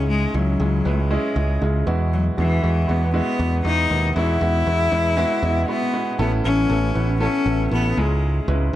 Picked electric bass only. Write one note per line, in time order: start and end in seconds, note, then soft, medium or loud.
0.00 0.25 C#2 medium
0.34 0.55 C#2 medium
0.60 0.80 C#2 medium
0.85 1.16 C#2 medium
1.36 1.57 C#2 medium
1.62 1.82 C#2 medium
1.87 2.29 E2 medium
2.38 2.59 E2 medium
2.63 2.84 E2 medium
2.89 3.20 E2 medium
3.40 3.60 E2 medium
3.65 3.86 E2 loud
3.90 4.11 D#2 medium
4.16 4.37 E2 loud
4.41 4.62 E2 medium
4.66 4.87 E2 medium
4.92 5.23 E2 loud
5.43 5.64 E2 loud
6.19 6.40 A1 loud
6.44 6.65 A1 medium
6.70 6.91 A1 loud
6.95 7.27 A1 medium
7.46 7.67 A1 medium
7.71 7.92 A1 loud
7.97 8.39 C#2 medium
8.48 8.69 C#2 loud